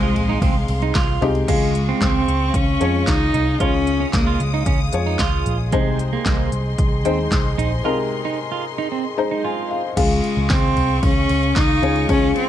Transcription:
Already playing: C2 C3 G#3 C4 D#4 G#4 C5 F5 C6
0.03 F4
0.16 A#1, floor tom, ride
0.29 D#4
0.42 C2 C4, kick, ride
0.68 C2, ride
0.82 D#4, ride
0.95 C2 F4, kick, snare, clap, ride
1.21 C2 G#3 C4 D#4 G4, floor tom, ride
1.35 ride
1.48 C#2 C#3 G#3 F4 G#4 F5 C#6, kick, closed hi-hat, crash
1.75 closed hi-hat
1.89 C4
2.02 C#2 C4, kick, snare, clap, closed hi-hat
2.28 C#2, closed hi-hat
2.54 C#2 C#4, kick, closed hi-hat
2.80 F2 G#3 C#4 F4 C#5, closed hi-hat
3.07 C#2 D#4, kick, snare, clap, closed hi-hat
3.34 C2 D#4, closed hi-hat, floor tom
3.60 C#2 C#3 G#3 C#4 F4 C#5 D#6, kick, closed hi-hat
3.87 closed hi-hat
4.00 C#4
4.13 C#2 A#3, kick, snare, clap, closed hi-hat
4.27 F4
4.40 C#2 G#3, closed hi-hat
4.54 D#4
4.66 C#2 C#4, kick, closed hi-hat
4.93 F2 G#3 F4 C#5, closed hi-hat
5.06 D#4
5.19 C#2 F4, kick, snare, clap, closed hi-hat
5.46 A#1, closed hi-hat, floor tom
5.72 C2 C3 G#3 D#4 C5 D#5 C6, kick, closed hi-hat
5.99 closed hi-hat
6.13 A#3
6.26 C2, kick, snare, clap, closed hi-hat
6.52 C2, closed hi-hat
6.78 C2, kick, closed hi-hat
7.05 D#2 G#3 C4 D#4 C5, closed hi-hat
7.32 C2, kick, snare, clap, closed hi-hat
7.58 A#1 D#4, closed hi-hat, floor tom
7.84 C3 G#3 D#4 F4 A#4
8.25 D#4
8.52 F4
8.78 D#4
8.92 C4
9.17 G#3 D#4 C5 A#5
9.31 D#4
9.44 F4 G#5
9.71 F5
9.97 C#2 C#3 G#3 F4 G#4 F5 C#6, kick, crash, ride
10.24 ride
10.37 C#2
10.50 C#2 C4, kick, snare, clap, ride
10.77 C2, floor tom, ride
11.03 C#2 C#4, kick, ride
11.29 C#2, ride
11.43 ride
11.56 C#2 D#4, kick, snare, clap, ride
11.82 C#2 G#3 C#4 F4 C#5, floor tom, ride
11.96 ride
12.09 C#2 C#3 G#3 C#4 F4 C#5, kick, ride
12.36 C4, ride

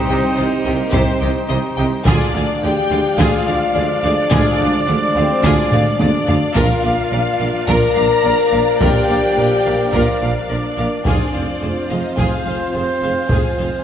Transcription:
Already playing: G3 C4 D#4 G4 C5 G5
0.09 C2 C3 G4 D#5 G5
0.36 C2 C3 G4 C5 D#5
0.65 C2 C3 A#3 G4 A#4 D#5 G5
0.91 C2 C3 C4 G4 C5, taiko
1.20 C2 C3 G4 D#5 G5
1.48 C2 C3 G4 C5 D#5
1.76 C2 C3 G4 D#5 G5
2.05 D2 D3 F3 G#3 D4 F4 G#4 D5 F5, taiko
2.34 D2 D3 G#4 D5 F5
2.62 D2 D3 G4 G#4 D5 G5
2.90 D2 D3 G#4 D5 F5
3.18 D2 D3 F4 G#4 F5, taiko
3.47 D2 D3 G#4 D5 F5
3.74 D2 D3 G#4 D5
4.03 D2 D3 D4 G#4 D5 F5
4.30 D2 D3 F4 G#4, taiko
4.58 D2 D3 G#4 D5 F5
4.87 D2 D3 G#4 D5
5.15 D2 D3 C4 G#4 C5 D5 F5
5.43 D2 D3 D4 F4 G#4 D5, taiko
5.71 D2 D3 G#4 D5 F5, taiko low-mid
5.98 D2 D3 D4 G#4 D5, taiko high
6.02 D2
6.27 D2 D3 G#4 D5 F5, taiko low
6.54 A#1 A#2 F3 A#3 F4 A#4 D5 F5, taiko
6.58 D4 D5 F5
6.83 A#1 A#2 A#4 D5 F5
7.12 A#1 A#2 A#4 D5
7.39 A#1 A#2 A#4 D5 F5
7.67 A#1 A#2 F4 A#4 A#5, taiko
7.95 A#1 A#2 A#4 D5 F5
8.24 A#1 A#2 A#4 D5
8.51 A#1 A#2 A#4 D5 F5
8.80 A#1 A#2 F4 G4 A#4 G5, taiko
9.08 A#1 A#2 A#4 D5 F5
9.37 A#1 A#2 A#4 D5
9.66 A#1 A#2 A#4 D5 F5
9.93 A#1 A#2 F4 A#4 F5, taiko
10.21 A#1 A#2 A#4 D5 F5
10.49 A#1 A#2 D4 A#4 D5
10.77 A#1 A#2 A#4 D5 F5
11.04 F1 F2 F3 C4 D4 F4 G#4 C5 D5 F5, taiko
11.33 F1 F2 G#4 C5 F5
11.61 F1 F2 G#4 C5
11.88 F1 F2 D#4 G#4 C5 D#5 F5
12.16 F1 F2 F4 G#4 F5, taiko
12.46 F1 F2 G#4 C5 F5
12.72 F1 F2 C4 G#4 C5
13.03 F1 F2 G#4 C5 F5
13.29 F1 F2 G#3 F4 G#4, taiko
13.58 F1 F2 G#4 C5 F5

